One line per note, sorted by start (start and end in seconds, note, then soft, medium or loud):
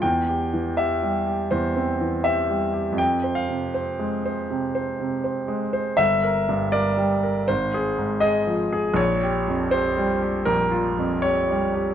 0.02 1.47 E2 soft
0.02 0.78 G5 medium
0.29 0.69 G4 soft
0.54 0.93 E3 soft
0.77 1.18 G4 soft
0.77 1.51 E5 medium
1.03 1.42 G3 soft
1.26 1.66 G4 soft
1.51 2.95 E2 soft
1.51 2.25 C5 soft
1.76 2.16 C4 soft
2.01 2.39 E3 soft
2.24 2.64 G4 soft
2.24 2.98 E5 medium
2.49 2.89 G3 soft
2.73 2.99 G4 soft
2.92 4.43 F2 soft
2.98 3.36 G5 medium
3.24 3.64 C5 soft
3.35 5.61 F5 soft
3.49 3.89 C3 soft
3.74 4.15 C5 soft
3.99 4.40 G#3 soft
4.25 4.66 C5 soft
4.50 4.90 C3 soft
4.75 5.14 C5 soft
5.00 5.39 C3 soft
5.24 5.64 C5 soft
5.48 5.88 G#3 soft
5.73 5.98 C5 soft
5.97 7.44 G1 soft
5.97 6.73 E5 medium
6.23 6.63 A#4 soft
6.49 6.88 G2 soft
6.72 7.13 A#4 soft
6.72 7.48 D5 medium
6.97 7.38 G3 soft
7.23 7.48 A#4 soft
7.48 8.94 G#1 soft
7.48 8.22 C5 medium
7.74 8.13 G#4 soft
7.98 8.38 G#2 soft
8.20 8.62 G#4 soft
8.20 8.97 D#5 medium
8.47 8.88 F3 soft
8.73 8.98 G#4 soft
8.94 10.41 A#1 soft
8.94 9.72 C#5 medium
9.23 9.63 G4 soft
9.48 9.87 F2 soft
9.71 10.12 G4 soft
9.71 10.46 C5 medium
9.97 10.37 G3 soft
10.22 10.62 G4 soft
10.45 11.94 A#1 soft
10.45 11.23 A#4 medium
10.71 11.13 F4 soft
10.98 11.39 F2 soft
11.22 11.65 G4 soft
11.22 11.94 C#5 medium
11.50 11.90 G3 soft
11.74 11.94 G4 soft